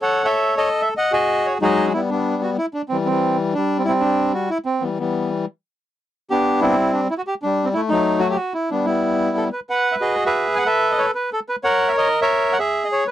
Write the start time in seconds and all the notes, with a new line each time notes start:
0.02 A4 C#5 F#5
0.24 A4 C#5 E5
0.57 A4 D#5
0.82 E5
0.97 D#5 F#5
1.12 F#4 G#4 D#5
1.46 C#5
1.62 F#3 G#3 D#4 F#4 G#4 D#5
1.85 C#4
1.93 G3 B3 E4
2.10 G3 B3 D4
2.43 F#4
2.58 E4
2.74 D4
2.89 E3 G3 C4
3.06 E3 G3 C4
3.54 G3 D4
3.79 C4
3.85 G3 C4 E4
4.00 G3 D4
4.34 F#4
4.50 E4
4.65 C4
4.80 E3 G3 B3
4.99 E3 G3 B3
6.30 B3 D4 G4
6.61 G3 C4 E4
6.93 D4
7.10 E4
7.18 F#4
7.27 G4
7.42 G3 D4
7.64 C4
7.74 A3 E4
7.89 F#3 A3 D#4
8.19 F#4
8.30 G4
8.35 F#4
8.54 E4
8.70 G3 B3 D4
8.85 G3 B3 E4
9.37 A4
9.52 B4
9.70 B4 F#5
9.92 E5
10.01 F#4 G#4 D#5
10.25 G#4 B4 E5
10.55 F#5 G#5
10.66 A4 B4 E5
10.91 D#5
10.98 C#5
11.15 B4
11.33 A4
11.49 B4
11.63 A#4 C#5 F#5
11.88 E5
11.97 A#4 D#5
12.21 A#4 C#5 E5
12.52 F#5
12.59 G#4 E5
12.84 D#5
12.92 C#5
13.07 B4